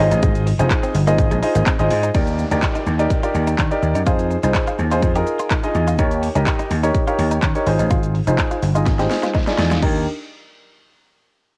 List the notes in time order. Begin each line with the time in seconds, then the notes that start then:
0.00 D#4 F4 G#4 C5 D#5
0.11 A1 D#4, closed hi-hat, shaker
0.23 G#1 G#3, kick, closed hi-hat, shaker
0.35 closed hi-hat, shaker
0.47 muted clean electric guitar stroke, open hi-hat, shaker
0.59 F1 C4 D#4 F4 G#4 C5 D#5, closed hi-hat, shaker
0.70 kick, clap, closed hi-hat, shaker
0.83 C4, closed hi-hat, shaker
0.95 G1, muted clean electric guitar stroke, open hi-hat, shaker
1.07 A#3 D#4 F4 G#4 C5 D#5, closed hi-hat, shaker
1.18 G#1, kick, closed hi-hat, shaker
1.31 A#1 G#3, closed hi-hat, shaker
1.42 D#4 F4 G#4 C5 D#5, muted clean electric guitar stroke, open hi-hat, shaker
1.55 G#1 A#3, closed hi-hat, shaker
1.66 C4, kick, clap, closed hi-hat, shaker
1.79 G#1 D#4 F4 G#4 C5 D#5, closed hi-hat, shaker
1.91 G#2, muted clean electric guitar stroke, open hi-hat, shaker
2.03 D#4, closed hi-hat, shaker
2.14 D#2 D#4 G4 A#4 D5, kick, closed hi-hat, downlifter, shaker
2.27 closed hi-hat, shaker
2.39 muted clean electric guitar stroke, shaker
2.51 D2 D4 D#4 G4 A#4 D5, closed hi-hat, shaker
2.63 kick, clap, closed hi-hat, shaker
2.75 D#4, closed hi-hat, shaker
2.87 D#2, muted clean electric guitar stroke, shaker
2.99 D#4 G4 A#4 D5, closed hi-hat, shaker
3.10 kick, closed hi-hat, shaker
3.23 D#4 F4 G4 A#4 D5, closed hi-hat, shaker
3.35 D#2, muted clean electric guitar stroke, shaker
3.47 D#4, closed hi-hat, shaker
3.58 D#3 D4, kick, clap, closed hi-hat, shaker
3.71 D#4 G4 A#4 D5, closed hi-hat, shaker
3.83 D#2, muted clean electric guitar stroke, shaker
3.95 F#2 D#4, closed hi-hat, shaker
4.06 F2 D#4 F4 G#4 C5, kick, closed hi-hat, shaker
4.19 closed hi-hat, shaker
4.31 muted clean electric guitar stroke, shaker
4.43 C2 D#4 F4 G#4 C5, closed hi-hat, shaker
4.55 kick, clap, closed hi-hat, shaker
4.67 F4, closed hi-hat, shaker
4.79 D#2, muted clean electric guitar stroke, shaker
4.91 D#4 F4 G#4 C5, closed hi-hat, shaker
5.02 F2, kick, closed hi-hat, shaker
5.15 D#4 F4 G4 G#4 A#4, closed hi-hat, shaker
5.27 muted clean electric guitar stroke, shaker
5.39 F4, closed hi-hat, shaker
5.50 D#4, kick, clap, closed hi-hat, shaker
5.63 D#4 F4 G#4 D#5, closed hi-hat, shaker
5.75 E2, muted clean electric guitar stroke, shaker
5.87 F4, closed hi-hat, shaker
5.98 D#2 D#4 G4 A#4 C#5, kick, closed hi-hat, shaker
6.11 closed hi-hat, shaker
6.23 muted clean electric guitar stroke, open hi-hat, shaker
6.35 C#2 C#4 D#4 G4 A#4 D#5, closed hi-hat, shaker
6.47 kick, clap, closed hi-hat, shaker
6.59 D#4, closed hi-hat, shaker
6.71 D#2, muted clean electric guitar stroke, open hi-hat, shaker
6.83 D#4 G4 A#4 C#5, closed hi-hat, shaker
6.94 kick, closed hi-hat, shaker
7.07 D#4 F4 G4 A#4 C#5, closed hi-hat, shaker
7.19 D#2, muted clean electric guitar stroke, open hi-hat, shaker
7.31 D#4, closed hi-hat, shaker
7.43 D#3 C#4, kick, clap, closed hi-hat, shaker
7.55 D#4 G4 A#4 C#5, closed hi-hat, shaker
7.66 G#1 D#4 F4 G#4 C5, muted clean electric guitar stroke, open hi-hat, shaker
7.79 A1 D#4, closed hi-hat, shaker
7.91 G#1 F4, kick, closed hi-hat, shaker
8.03 closed hi-hat, shaker
8.15 muted clean electric guitar stroke, open hi-hat, shaker
8.27 F1 D#4 F4 G#4 C5, closed hi-hat, shaker
8.39 kick, clap, closed hi-hat, shaker
8.51 F4, closed hi-hat, shaker
8.63 G1, muted clean electric guitar stroke, open hi-hat, shaker
8.75 D#4 F4 G#4 D#5, closed hi-hat, shaker
8.86 kick, snare, closed hi-hat, shaker
8.99 D#4 F4 G4 G#4 C5, snare, closed hi-hat, shaker
9.11 muted clean electric guitar stroke, snare, open hi-hat, shaker
9.23 F4, snare, closed hi-hat, shaker
9.34 D#4, kick, snare, closed hi-hat, shaker
9.47 D#4 F4 G#4 D5, snare, closed hi-hat, shaker
9.59 E2, muted clean electric guitar stroke, snare, open hi-hat, shaker
9.71 F4, snare, closed hi-hat, shaker
9.83 D4 D#4 G4 A#4, kick, crash